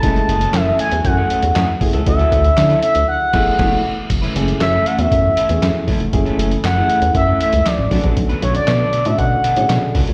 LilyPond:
<<
  \new Staff \with { instrumentName = "Analog synth lead" } { \time 4/4 \key fis \minor \tempo 4 = 118 a''4 e''8 gis''8 fis''4. r8 | e''4. e''8 fis''4. r8 | r4 e''8 fis''16 e''4. r8. | r4 fis''4 e''8 e''8 d''8. r16 |
r8 cis''16 d''4 e''16 fis''4. r8 | }
  \new Staff \with { instrumentName = "Clean electric guitar" } { \time 4/4 \key fis \minor <e a cis' gis'>16 r16 <e a cis' gis'>16 <e a cis' gis'>16 r16 <e a cis' gis'>16 <e a cis' gis'>16 r8 <e a cis' gis'>16 <e a cis' gis'>16 r16 <e a cis' gis'>16 r8 <e a cis' a'>16 | r16 <fis cis' e' a'>16 <fis cis' e' a'>16 r8 <fis cis' e' a'>16 r4 <a e' gis' b'>8 <a e' gis' cis''>8 r8 | r16 <a cis' e' b'>16 <a cis' e' a'>16 r8 <a cis' e' a'>16 <a cis' e' a'>16 r8. <a cis' e' a'>16 r8. <a cis' e' a'>16 r16 | r16 <a cis' e' a'>16 <a cis' e' a'>16 r8 <a cis' e' a'>16 <a cis' e' a'>16 r8 <a cis' e' a'>16 <a cis' e' a'>16 r8. <fis b d' a'>16 <fis b d' a'>16 |
r16 <fis b d' b'>16 <fis b d' a'>16 r8 <fis b d' a'>16 <fis b d' a'>16 r8. <fis b d' a'>16 r8. <fis b d' a'>16 r16 | }
  \new Staff \with { instrumentName = "Grand piano" } { \time 4/4 \key fis \minor <gis a cis' e'>8 r8 <a cis' e' a'>8 r8 <a cis' e' fis'>4 r8 <a cis' e' gis'>16 r16 | <a cis' e' fis'>8 r8 <a cis' e' a'>8 r4 <a b e' gis'>8 <a b e' fis'>8 r8 | r8 <a cis' e' gis'>8. r8 <a cis' e' fis'>8 r8 <a cis' e' gis'>8. r8 | <a cis' e' gis'>8. r8 <a cis' e' gis'>8 r8 <a cis' e' a'>8. r8 <a cis' d' fis'>8~ |
<a cis' d' fis'>16 r16 <a cis' d' fis'>8. r8 <a cis' d' fis'>8 r8 <a cis' d' gis'>8. r8 | }
  \new Staff \with { instrumentName = "Analog synth pad" } { \time 4/4 \key fis \minor << { fis'1 | e'2 gis'2 | fis'1 | e'2.~ e'8 fis'8~ |
fis'1 | } \\ { <e fis cis'>1 | <d fis cis'>2 <e a b>2 | <e a cis'>1~ | <e a cis'>2.~ <e a cis'>8 <d a b>8~ |
<d a b>1 | } >> }
  \new Staff \with { instrumentName = "Analog synth bass" } { \clef bass \time 4/4 \key fis \minor fis,,8 fis,,8 fis,8 r16 e,16 fis,8 r16 e,16 fis,16 r16 fis,,16 cis,16 | d,8 d,8 d8 r16 d,16 r8 fis,,8 fis,,8 r8 | fis,,8 fis,,8 fis,8 r16 e,16 fis,8 r16 e,16 fis,16 r16 fis,,16 eis,,16 | fis,,8 fis,,8 fis,8 r16 e,16 fis,8 r16 cis,16 r16 a,,16 b,,16 ais,,16 |
b,,8 b,,8 b,8 r16 a,16 b,8 r16 a,16 b,16 r16 cis,16 ais,,16 | }
  \new DrumStaff \with { instrumentName = "Drums" } \drummode { \time 4/4 <hh bd>16 hh16 hh16 hh16 <hc hh sn>8 hh16 hh16 <hh bd>8 hh16 hh16 <hc hh sn>8 <hho bd>16 hh16 | <hh bd>16 hh16 <hh bd>16 hh16 <hc hh sn>16 hh16 hh16 hh16 r8 <cymc bd sn>8 <cymc bd sn>4 | <cymc hh bd>16 hh16 hh16 hh16 <hc hh sn>8 hh16 hh16 <hh bd>8 hh16 hh16 <hc hh sn>8 <hho bd>16 hh16 | <hh bd>16 hh16 hh16 hh16 <hc hh sn>8 hh16 hh16 <hh bd>8 hh16 hh16 <hc hh sn>8 <hho bd>16 <hh bd>16 |
<hh bd>16 hh16 hh16 hh16 <hc hh sn>8 hh16 hh16 <hh bd>8 hh16 hh16 <hc hh sn>8 <hho bd>16 hh16 | }
>>